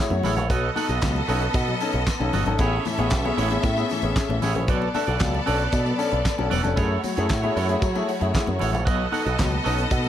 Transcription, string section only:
0.00 0.46 A3 medium
0.00 0.46 F#4 medium
0.00 0.46 C#5 medium
0.50 2.55 B3 medium
0.50 2.56 A4 loud
0.50 2.55 D#5 medium
2.59 4.64 C#4 medium
2.59 4.64 A4 medium
2.59 4.64 E5 loud
4.68 6.74 B3 medium
4.68 6.74 A4 medium
4.68 6.74 D5 medium
6.78 8.83 A3 medium
6.78 8.83 F#4 medium
6.78 8.83 C#5 medium
8.86 10.09 B3 medium
8.86 10.09 A4 medium
8.86 10.09 D#5 loud

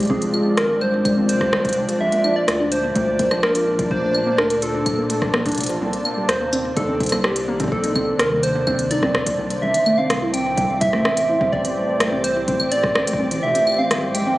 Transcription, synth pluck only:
0.10 0.20 C4 loud
0.34 0.44 F4 medium
0.46 0.50 C4 medium
0.69 0.76 G#3 medium
0.82 0.85 G3 medium
1.05 1.15 G#3 loud
1.17 1.27 C4 loud
1.41 1.45 G4 medium
1.53 1.63 G3 loud
1.77 1.83 G3 medium
1.89 1.95 G4 medium
2.12 2.22 A#3 loud
2.24 2.34 D4 loud
2.48 2.58 F4 medium
2.60 2.64 D4 medium
2.84 2.90 A#3 medium
2.96 3.00 A3 medium
3.19 3.29 A#3 loud
3.31 3.41 D4 loud
3.55 3.65 F4 medium
3.67 3.71 D4 medium
3.91 3.98 A#3 medium
4.03 4.07 A3 medium
4.27 4.36 A#3 loud
4.39 4.48 D4 loud
4.62 4.72 F4 medium
4.74 4.78 D4 medium
4.98 5.05 A#3 medium
5.10 5.14 A3 medium
5.34 5.44 A#3 loud
5.46 5.55 D4 loud
5.70 5.79 F4 medium
5.81 5.85 C4 medium
6.05 6.12 A#3 medium
6.17 6.21 G3 medium
6.41 6.51 A#3 loud
6.53 6.63 C4 loud
6.77 6.87 D#4 medium
6.88 6.92 C4 medium
7.12 7.19 A#3 medium
7.24 7.28 G3 medium
7.48 7.58 A#3 loud
7.60 7.70 C4 medium
7.84 7.94 D#4 medium
7.96 8.00 C4 medium
8.20 8.26 A#3 medium
8.31 8.35 G3 medium
8.55 8.65 A#3 loud
8.67 8.77 C4 loud
8.91 9.01 D#4 medium
9.03 9.07 C4 medium
9.27 9.33 A#3 medium
9.39 9.43 G3 medium
9.62 9.66 G3 medium
9.86 9.96 A3 loud
9.98 10.08 C4 loud
10.22 10.32 E4 medium
10.34 10.38 C4 medium
10.58 10.64 C4 medium
10.70 10.74 G3 medium
10.93 11.03 A3 loud
11.05 11.15 C4 loud
11.29 11.39 E4 medium
11.41 11.45 C4 medium
11.65 11.71 C4 medium
11.77 11.81 G3 medium
12.01 12.10 A3 loud
12.12 12.22 C4 loud
12.36 12.46 E4 medium
12.48 12.52 C4 medium
12.72 12.79 C4 medium
12.84 12.88 G3 medium
13.08 13.17 A3 loud
13.19 13.29 C4 loud
13.43 13.53 F4 medium
13.55 13.59 C4 medium
13.79 13.86 C4 medium
13.91 13.95 G3 medium
14.15 14.25 G#3 loud
14.27 14.36 C4 loud

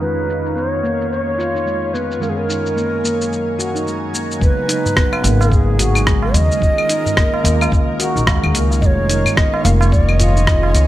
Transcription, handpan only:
0.01 0.17 G#3 medium
0.28 0.38 D#4 medium
0.56 0.72 B3 medium
0.83 0.93 A#3 medium
1.39 1.53 F4 medium
1.55 1.65 D#4 medium
1.66 1.93 G#3 medium
1.94 2.03 B3 medium
2.22 2.37 G#3 medium
2.49 2.58 D#4 medium
2.76 2.92 A#3 medium
3.04 3.13 A#3 medium
3.59 3.74 F#4 medium
3.75 3.85 D#4 medium
3.86 4.13 G#3 medium
4.14 4.23 A#3 medium
4.41 4.57 G#3 medium
4.68 4.78 D#4 medium
4.96 5.12 B3 medium
5.23 5.33 A#3 loud
5.79 5.94 F#4 loud
5.95 6.05 D#4 medium
6.06 6.33 G#3 medium
6.34 6.43 B3 medium
6.61 6.77 G#3 medium
6.89 6.98 D#4 medium
7.17 7.32 A#3 medium
7.44 7.53 A#3 loud
8.00 8.14 F#4 loud
8.16 8.26 D#4 medium
8.27 8.53 G#3 medium
8.54 8.64 A#3 medium
8.82 8.97 G#3 medium
9.09 9.19 D#4 medium
9.37 9.52 B3 medium
9.64 9.74 A#3 loud
10.20 10.34 F4 loud
10.36 10.46 D#4 medium
10.47 10.73 G#3 medium
10.74 10.84 B3 medium

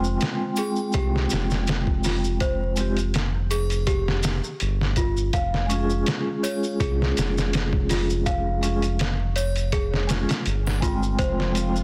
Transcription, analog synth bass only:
0.00 0.18 F1 loud
0.94 1.27 C2 medium
1.32 4.40 F1 medium
4.61 5.31 G1 medium
5.33 6.04 F1 loud
6.80 7.13 C2 medium
7.17 10.26 F1 medium
10.46 11.16 G1 medium
11.19 11.84 F1 loud

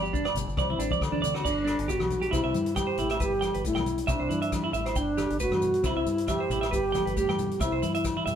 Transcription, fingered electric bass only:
0.00 0.29 G1 medium
0.35 0.46 G1 medium
0.47 0.57 G1 medium
0.57 0.77 C2 loud
0.78 0.90 A1 medium
1.01 1.12 D2 loud
1.13 1.22 D2 medium
1.23 1.43 D2 medium
1.45 1.76 G1 medium
1.79 1.99 G1 medium
2.01 2.30 B1 medium
2.33 2.44 C2 medium
2.44 2.54 C2 medium
2.55 2.94 G2 medium
2.98 3.18 A1 medium
3.20 3.51 G1 medium
3.55 3.74 G1 medium
3.77 4.06 B1 medium
4.08 4.19 C2 loud
4.21 4.30 C2 medium
4.31 4.70 G2 medium
4.74 4.94 A1 medium
4.95 5.26 G1 medium
5.30 5.50 G1 medium
5.51 5.80 G2 medium
5.84 5.95 C2 loud
5.96 6.05 C2 medium
6.06 6.45 G2 medium
6.50 6.70 A1 medium
6.73 7.03 G1 medium
7.06 7.26 G1 medium
7.28 7.57 G2 medium
7.60 7.71 C2 medium
7.72 7.81 C2 medium
7.83 8.22 G2 medium
8.26 8.35 G2 medium

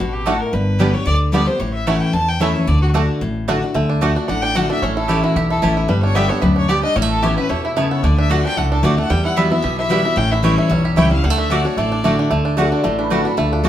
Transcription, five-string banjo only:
0.27 0.33 A3 medium
0.27 0.33 D4 medium
0.80 0.86 G3 medium
0.80 0.87 B3 medium
0.80 0.87 D4 medium
1.34 1.40 G3 medium
1.34 1.40 B3 medium
1.34 1.40 D4 medium
1.87 1.94 A3 medium
1.87 1.94 C#4 medium
1.87 1.94 E4 medium
2.41 2.47 A3 medium
2.41 2.47 C#4 medium
2.41 2.48 E4 medium
2.95 3.01 A3 medium
2.95 3.01 D4 medium
3.48 3.55 A3 medium
3.48 3.55 D4 medium
3.75 4.14 A3 medium
3.89 4.00 D4 medium
4.02 4.15 D4 medium
4.16 4.27 D4 medium
4.28 4.42 D4 medium
4.43 4.54 D4 medium
4.55 4.69 D4 medium
4.70 4.82 D4 medium
4.82 5.21 C#4 medium
4.97 5.23 E4 medium
5.09 5.48 A3 medium
5.24 5.49 E4 medium
5.37 5.61 G4 medium
5.50 5.76 E4 medium
5.63 5.89 G4 medium
5.77 5.89 E4 medium
5.89 6.28 G3 medium
6.03 6.29 D4 medium
6.15 6.54 B3 medium
6.30 6.55 D4 medium
6.42 6.68 G4 medium
6.56 6.82 D4 medium
6.69 6.96 G4 medium
6.83 6.96 D4 medium
6.96 7.02 G3 medium
7.02 7.23 A3 medium
7.23 7.61 E4 medium
7.38 7.74 G4 medium
7.50 7.76 A3 medium
7.65 8.01 E4 medium
7.77 8.03 A3 medium
7.91 8.03 B3 medium
8.04 8.17 D4 medium
8.18 8.44 D4 medium
8.31 8.69 D3 medium
8.45 8.71 D4 medium
8.57 8.95 A3 medium
8.72 8.83 D4 medium
8.84 9.11 D4 medium
8.98 9.10 A3 medium
9.10 9.49 G3 medium
9.25 9.50 E4 medium
9.37 9.75 B3 medium
9.52 9.78 E4 medium
9.64 9.91 G4 medium
9.79 10.04 E4 medium
9.92 10.18 G4 medium
10.05 10.17 E4 medium
10.17 10.55 C#4 medium
10.32 10.57 E4 medium
10.44 10.82 E3 medium
10.58 10.95 E4 medium
10.71 11.09 G3 medium
10.85 11.21 G4 medium
10.97 11.24 E4 medium
11.11 11.23 G3 medium
11.24 11.30 G3 medium
11.30 11.51 A3 medium
11.38 11.49 D4 medium
11.50 11.64 D4 medium
11.65 11.91 D4 medium
11.77 12.03 A3 medium
11.92 12.18 D4 medium
12.04 12.29 A3 medium
12.19 12.31 D4 medium
12.31 12.56 A3 medium
12.45 12.72 D4 medium
12.57 12.83 A3 medium
12.72 12.98 D4 medium
12.84 13.37 A3 medium
12.99 13.11 D4 medium
13.11 13.25 D4 medium
13.25 13.52 D4 medium
13.38 13.69 A3 medium
13.53 13.64 D4 medium
13.65 13.69 D4 medium

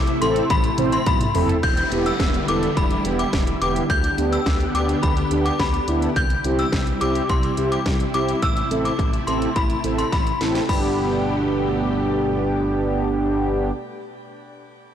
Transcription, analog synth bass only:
0.22 0.42 A1 loud
0.50 0.70 A1 loud
0.78 0.98 A1 loud
1.07 1.26 B1 loud
1.35 1.55 F#1 loud
1.63 1.83 E1 loud
1.92 2.11 E1 loud
2.20 2.40 E1 loud
2.48 2.68 E1 medium
2.77 2.97 E1 loud
3.05 3.25 E1 medium
3.33 3.53 E1 loud
3.61 3.81 E1 loud
3.90 4.10 D2 loud
4.18 4.38 D2 medium
4.46 4.66 D2 loud
4.74 4.94 D2 loud
5.03 5.23 D2 loud
5.31 5.51 D2 medium
5.60 5.79 D2 loud
5.88 6.08 D2 loud
6.16 6.36 C2 loud
6.44 6.64 C2 medium
6.73 6.92 C2 loud
7.01 7.21 C2 loud
7.30 7.49 C2 loud
7.58 7.78 C2 loud
7.86 8.06 C2 medium
8.14 8.34 C2 loud
8.43 8.62 A1 loud
8.71 8.91 A1 medium
8.99 9.19 A1 loud
9.28 9.47 A1 loud
9.56 9.76 A1 medium
9.84 10.04 A1 medium
10.13 10.32 A1 loud
10.41 10.61 A1 loud
10.69 13.71 G1 loud

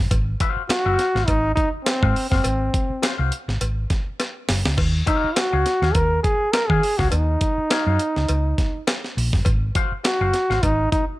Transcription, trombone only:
0.70 1.28 F#4 loud
1.26 1.55 D#4 loud
1.55 1.69 D#4 medium
1.84 2.27 C4 medium
2.30 3.15 C4 medium
5.07 5.37 D#4 medium
5.36 5.96 F#4 loud
5.94 6.23 A#4 loud
6.23 6.54 G#4 medium
6.52 6.70 A#4 loud
6.68 6.99 G#4 loud
6.98 7.10 F#4 medium
7.10 8.83 D#4 medium
10.05 10.65 F#4 medium
10.63 10.92 D#4 medium
10.92 11.05 D#4 medium

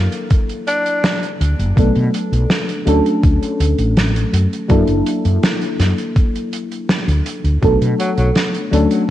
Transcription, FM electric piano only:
0.00 1.69 F#3 medium
0.00 1.70 A#3 medium
0.00 1.70 D4 medium
0.00 1.70 E4 medium
0.00 1.71 A4 medium
1.76 2.79 F#3 medium
1.76 2.80 A3 medium
1.76 2.80 B3 medium
1.76 2.80 D4 medium
1.76 2.81 A4 medium
2.86 4.62 F#3 medium
2.86 4.62 A3 medium
2.86 4.63 C#4 medium
2.86 4.63 D4 medium
2.86 4.64 A4 loud
4.68 7.55 F#3 medium
4.68 7.55 A#3 medium
4.68 7.55 D4 medium
4.68 7.56 E4 medium
4.68 7.56 A4 medium
7.62 8.65 F#3 medium
7.62 8.65 A3 medium
7.62 8.66 B3 medium
7.62 8.66 D4 medium
7.62 8.66 A4 medium
8.71 9.10 F#3 medium
8.71 9.10 A3 medium
8.71 9.10 C#4 medium
8.71 9.10 D4 medium
8.71 9.10 A4 medium

